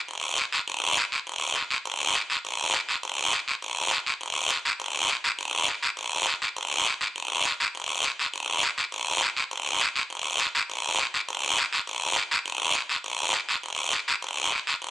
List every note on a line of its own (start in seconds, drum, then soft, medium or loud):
0.08 long guiro medium
0.38 short guiro medium
0.52 short guiro medium
0.68 long guiro medium
0.97 short guiro medium
1.12 short guiro medium
1.27 long guiro medium
1.56 short guiro medium
1.71 short guiro medium
1.86 long guiro medium
2.15 short guiro medium
2.30 short guiro medium
2.45 long guiro medium
2.74 short guiro medium
2.89 short guiro medium
3.03 long guiro medium
3.33 short guiro medium
3.48 short guiro medium
3.62 long guiro medium
3.91 short guiro medium
4.06 short guiro medium
4.21 long guiro medium
4.50 short guiro medium
4.65 short guiro medium
4.80 long guiro medium
5.09 short guiro medium
5.24 short guiro medium
5.39 long guiro medium
5.68 short guiro medium
5.82 short guiro medium
5.97 long guiro medium
6.27 short guiro medium
6.42 short guiro medium
6.56 long guiro medium
6.87 short guiro medium
7.01 short guiro medium
7.16 long guiro medium
7.45 short guiro medium
7.60 short guiro medium
7.75 long guiro medium
8.04 short guiro medium
8.19 short guiro medium
8.34 long guiro medium
8.63 short guiro medium
8.78 short guiro medium
8.92 long guiro medium
9.22 short guiro medium
9.37 short guiro medium
9.51 long guiro medium
9.81 short guiro medium
9.96 short guiro medium
10.10 long guiro medium
10.40 short guiro medium
10.55 short guiro medium
10.70 long guiro medium
10.99 short guiro medium
11.14 short guiro medium
11.29 long guiro medium
11.58 short guiro medium
11.73 short guiro medium
11.87 long guiro medium
12.16 short guiro medium
12.31 short guiro medium
12.46 long guiro medium
12.75 short guiro medium
12.89 short guiro medium
13.04 long guiro medium
13.34 short guiro medium
13.49 short guiro medium
13.63 long guiro medium
13.93 short guiro medium
14.08 short guiro medium
14.22 long guiro medium
14.52 short guiro medium
14.67 short guiro medium
14.82 long guiro medium